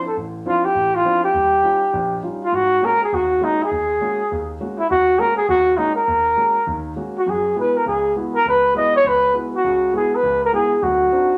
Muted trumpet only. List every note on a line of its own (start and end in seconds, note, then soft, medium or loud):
0.07 0.16 A4 medium
0.47 0.66 F4 medium
0.65 0.97 G4 loud
0.95 1.23 F4 medium
1.24 2.19 G4 medium
2.44 2.56 F4 medium
2.55 2.86 F#4 loud
2.85 3.02 A#4 medium
3.03 3.16 G#4 medium
3.14 3.46 F#4 medium
3.44 3.65 D#4 medium
3.64 4.50 G#4 medium
4.79 4.89 E4 medium
4.90 5.21 F#4 loud
5.19 5.36 A#4 medium
5.37 5.47 G#4 loud
5.49 5.79 F#4 loud
5.77 5.95 D#4 medium
5.95 6.80 A#4 medium
7.18 7.31 F#4 medium
7.30 7.57 G#4 medium
7.59 7.78 B4 medium
7.77 7.87 A#4 medium
7.88 8.14 G#4 medium
8.35 8.45 A#4 medium
8.48 8.74 B4 medium
8.77 8.92 D#5 medium
8.96 9.09 C#5 loud
9.07 9.35 B4 medium
9.55 9.92 F#4 medium
9.96 10.17 G#4 medium
10.15 10.44 B4 medium
10.45 10.53 A#4 medium
10.54 10.85 G#4 medium
10.83 11.38 F#4 medium